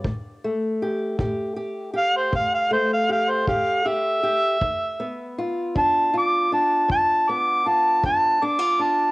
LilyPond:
<<
  \new Staff \with { instrumentName = "Harmonica" } { \time 12/8 \key a \dorian \tempo 4. = 53 r2 r8 f''16 c''16 f''16 f''16 c''16 f''16 f''16 c''16 f''8 e''4~ | e''4 r8 a''8 d'''8 a''8 a''8 d'''8 a''8 a''8 d'''8 a''8 | }
  \new Staff \with { instrumentName = "Steel-string acoustic guitar" } { \time 12/8 \key a \dorian << { r8 a8 g'8 g'8 g'8 g'4 a8 g'8 g'8 g'8 g'8 | r8 b8 f'8 d'8 f'8 d'4 b8 f'8 d'8 d'16 f'16 d'8 | } \\ { a,4 r8 a,4 r8 a,4 r8 a,4 r8 | g,4 r8 g,4 r8 g,4 r8 g,4 r8 | } >> }
  \new DrumStaff \with { instrumentName = "Drums" } \drummode { \time 12/8 bd4. bd4. bd4. bd4. | bd4. bd4. bd4. bd4. | }
>>